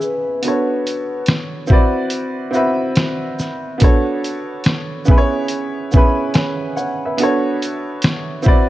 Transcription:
0.00 0.42 B3 medium
0.00 0.46 C#4 medium
0.00 0.46 E4 medium
0.00 0.45 G#4 medium
0.00 1.25 B4 medium
0.00 0.46 C#5 medium
0.00 0.11 E5 medium
0.00 0.10 G#5 medium
0.00 shaker soft
0.42 1.65 B3 medium
0.42 1.66 D4 medium
0.42 1.67 F#4 medium
0.42 closed hi-hat medium
0.46 1.68 A4 medium
0.46 1.68 C#5 medium
0.87 closed hi-hat soft
0.87 shaker soft
1.26 snare loud
1.26 closed hi-hat medium
1.67 2.41 C4 medium
1.67 2.42 E4 medium
1.67 2.43 F#4 medium
1.67 kick loud
1.67 shaker soft
1.72 2.43 B4 medium
1.72 2.44 D5 medium
2.10 closed hi-hat medium
2.51 3.45 C4 medium
2.51 3.46 E4 medium
2.51 3.47 F#4 medium
2.51 shaker soft
2.56 3.48 B4 medium
2.56 3.48 E5 medium
2.96 snare loud
2.96 closed hi-hat medium
3.39 snare soft
3.39 shaker soft
3.78 5.02 B3 medium
3.78 5.03 D4 medium
3.78 5.04 F#4 medium
3.78 kick loud
3.78 closed hi-hat medium
3.82 5.05 A4 medium
3.82 5.05 C#5 medium
4.24 closed hi-hat soft
4.24 shaker soft
4.64 snare loud
4.64 closed hi-hat medium
5.05 5.79 B3 medium
5.05 5.80 C#4 medium
5.05 5.80 E4 medium
5.05 kick loud
5.05 shaker soft
5.10 5.81 G#4 medium
5.10 5.18 B4 medium
5.18 5.85 C#5 loud
5.48 closed hi-hat medium
5.92 6.85 B3 medium
5.92 6.85 C#4 medium
5.92 6.86 E4 medium
5.92 kick medium
5.92 shaker soft
5.96 6.87 G#4 medium
5.96 6.37 B4 medium
6.34 6.75 C#5 soft
6.34 6.75 G#5 medium
6.34 snare loud
6.34 closed hi-hat medium
6.76 7.03 C#5 medium
6.76 7.02 F#5 medium
6.76 shaker soft
7.05 7.45 B4 medium
7.05 7.45 E5 medium
7.17 8.41 B3 medium
7.17 8.42 D4 medium
7.17 8.43 F#4 medium
7.17 closed hi-hat medium
7.21 8.43 A4 medium
7.21 8.44 C#5 medium
7.62 closed hi-hat soft
7.62 shaker soft
8.02 snare loud
8.02 closed hi-hat medium
8.43 8.69 C4 medium
8.43 8.69 E4 medium
8.43 8.69 F#4 medium
8.43 kick loud
8.43 shaker soft
8.47 8.69 B4 medium
8.47 8.69 D5 loud

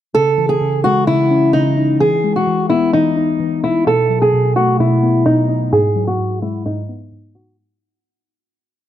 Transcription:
0.14 0.60 C#3 medium
0.14 0.47 A4 medium
0.38 1.54 E3 medium
0.49 0.82 G#4 medium
0.61 1.06 C#3 medium
0.84 2.00 G#3 medium
0.84 1.05 F#4 medium
1.07 1.52 C#3 medium
1.07 1.51 E4 medium
1.30 2.00 C#4 medium
1.53 2.00 C#3 medium
1.53 1.97 D#4 medium
1.77 2.00 D#4 medium
2.00 2.46 E3 medium
2.00 2.33 G#4 loud
2.24 3.40 G#3 medium
2.36 2.68 F#4 medium
2.47 2.92 E3 medium
2.69 3.86 B3 medium
2.69 2.90 E4 medium
2.93 3.39 E3 medium
2.93 3.59 D#4 medium
3.16 3.86 D#4 medium
3.40 3.86 E3 medium
3.63 3.86 E4 medium
3.63 3.84 E4 medium
3.87 4.32 B2 medium
3.87 4.20 A4 loud
4.10 5.26 F#3 medium
4.22 4.54 G#4 medium
4.33 4.78 B2 medium
4.56 5.72 A3 medium
4.56 4.77 F#4 medium
4.79 5.25 B2 medium
4.79 5.24 E4 medium
5.03 5.72 B3 medium
5.26 5.72 B2 medium
5.26 5.70 D#4 medium
5.49 5.72 D#4 medium
5.72 6.18 G#2 medium
5.72 6.05 G#4 medium
5.96 7.12 F#3 medium
6.07 6.40 F#4 medium
6.19 6.64 G#2 medium
6.42 7.58 G#3 medium
6.42 6.63 E4 medium
6.65 7.10 G#2 medium
6.65 7.31 D#4 medium
6.89 7.58 B3 medium
7.12 7.58 G#2 medium
7.35 7.58 D#4 medium
7.35 7.56 F#4 medium

